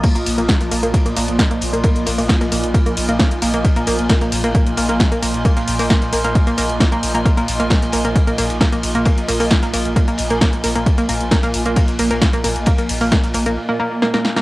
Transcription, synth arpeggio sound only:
0.04 0.10 A#3 loud
0.15 0.21 A#3 loud
0.38 0.44 A#3 loud
0.49 0.55 A#3 loud
0.72 0.78 A#3 loud
0.83 0.89 A#3 loud
1.06 1.12 A#3 loud
1.17 1.23 A#3 loud
1.39 1.45 A#3 loud
1.51 1.57 A#3 loud
1.73 1.79 A#3 loud
1.84 1.91 A#3 loud
2.07 2.13 A#3 loud
2.18 2.24 A#3 loud
2.41 2.47 A#3 loud
2.52 2.58 A#3 loud
2.74 2.81 A#3 loud
2.86 2.92 A#3 loud
3.09 3.15 A#3 loud
3.20 3.26 A#3 loud
3.42 3.48 A#3 loud
3.54 3.60 A#3 loud
3.76 3.82 A#3 loud
3.87 3.94 A#3 loud
4.10 4.16 A#3 loud
4.21 4.27 A#3 loud
4.44 4.50 A#3 loud
4.55 4.61 A#3 loud
4.78 4.84 A#3 loud
4.89 4.95 A#3 loud
5.12 5.18 A#3 loud
5.22 5.29 A#3 loud
5.45 5.51 A#3 loud
5.57 5.63 A#3 loud
5.79 5.85 A#3 loud
5.90 5.97 A#3 loud
6.13 6.19 A#3 loud
6.24 6.30 A#3 loud
6.47 6.53 A#3 loud
6.58 6.64 A#3 loud
6.81 6.87 A#3 loud
6.92 6.98 A#3 loud
7.15 7.21 A#3 loud
7.25 7.32 A#3 loud
7.37 7.43 A#3 loud
7.60 7.66 A#3 loud
7.71 7.77 A#3 loud
7.93 7.99 A#3 loud
8.05 8.11 A#3 loud
8.27 8.33 A#3 loud
8.38 8.45 A#3 loud
8.61 8.67 A#3 loud
8.72 8.78 A#3 loud
8.95 9.01 A#3 loud
9.06 9.12 A#3 loud
9.28 9.35 A#3 loud
9.40 9.46 A#3 loud
9.63 9.69 A#3 loud
9.74 9.80 A#3 loud
9.96 10.03 A#3 loud
10.08 10.14 A#3 loud
10.30 10.36 A#3 loud
10.41 10.48 A#3 loud
10.64 10.70 A#3 loud
10.76 10.81 A#3 loud
10.98 11.04 A#3 loud
11.09 11.15 A#3 loud
11.31 11.38 A#3 loud
11.43 11.49 A#3 loud
11.66 11.72 A#3 loud
11.77 11.83 A#3 loud
11.99 12.06 A#3 loud
12.11 12.17 A#3 loud
12.33 12.39 A#3 loud
12.44 12.51 A#3 loud
12.67 12.73 A#3 loud
12.78 12.84 A#3 loud
13.01 13.07 A#3 loud
13.12 13.18 A#3 loud
13.34 13.41 A#3 loud
13.46 13.52 A#3 loud
13.69 13.75 A#3 loud
13.79 13.86 A#3 loud
14.02 14.09 A#3 loud
14.14 14.20 A#3 loud
14.37 14.42 A#3 loud

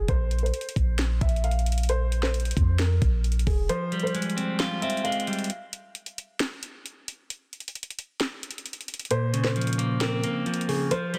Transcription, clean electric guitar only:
3.69 4.82 F3 medium
3.92 5.04 G3 medium
4.14 5.03 G#3 medium
4.37 4.81 C4 medium
4.60 5.50 F4 loud
4.82 5.50 C4 medium
5.05 5.50 G#3 medium
5.27 5.50 G3 medium
9.11 10.23 A#2 medium
9.33 10.46 C#3 medium
9.56 10.45 F3 medium
9.78 10.23 A#3 medium
10.01 10.91 C4 loud
10.24 10.91 A#3 medium
10.46 10.90 F3 medium
10.69 10.91 C#3 medium
10.91 11.19 F3 medium
11.14 11.19 G3 medium

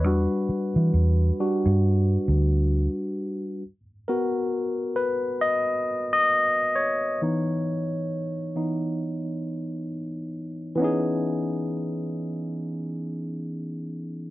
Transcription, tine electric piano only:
0.00 0.44 B4 medium
0.04 0.67 G3 soft
0.04 0.67 D4 soft
0.04 0.68 F#4 medium
1.40 1.79 G3 soft
1.40 1.80 D4 soft
1.40 1.80 F#4 soft
4.08 7.17 B3 soft
4.08 7.17 F#4 medium
4.08 7.17 A#4 medium
4.96 5.38 B4 medium
5.41 6.09 D#5 medium
6.13 6.71 D#5 medium
6.75 9.85 C#5 medium
7.22 7.84 E3 soft
7.22 7.84 B3 soft
7.22 7.85 D#4 medium
8.56 8.96 E3 soft
8.56 8.96 B3 soft
8.56 8.96 D#4 soft
10.75 14.30 E3 medium
10.75 14.30 B3 medium
10.79 14.30 C#4 medium
10.79 14.30 D#4 medium
10.84 14.30 G#4 medium

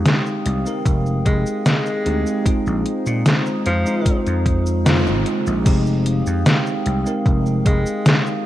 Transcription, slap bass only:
0.46 0.63 C2 loud
0.86 1.19 F1 medium
1.26 1.43 F1 medium
2.06 2.23 D2 medium
2.46 muted slap bass stroke soft
2.67 2.83 A#1 medium
3.07 3.22 A#2 medium
3.66 3.83 F2 medium
4.27 5.08 F2 medium
5.07 5.23 G#1 medium
5.47 5.63 A#1 medium
5.66 6.21 F1 loud
6.27 6.42 F2 medium
6.86 7.03 C2 medium
7.26 7.59 F1 medium
7.66 7.83 F1 medium

